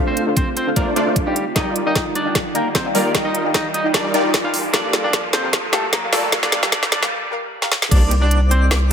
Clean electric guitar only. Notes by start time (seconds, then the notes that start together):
0.07 C4 C5
0.36 C4 C5
0.57 C4 C5
0.76 A#3 A#4
1.27 G3 G4
1.56 D#4 D#5
1.87 D#4 D#5
2.15 D4 D5
2.55 A#3 A#4
2.75 C4 C5
2.95 A#3 A#4
3.25 D#4 D#5
3.54 D#4 D#5
3.74 D#4 D#5
3.93 D4 D5
4.44 F4 F5
4.73 D4 D5
5.04 D4 D5
5.33 C4 C5
5.73 A3 A4
5.93 A#3 A#4
6.13 A3 A4
6.43 D4 D5
6.72 D4 D5
6.92 D4 D5
7.91 D4 D5
8.22 D4 D5
8.51 C4 C5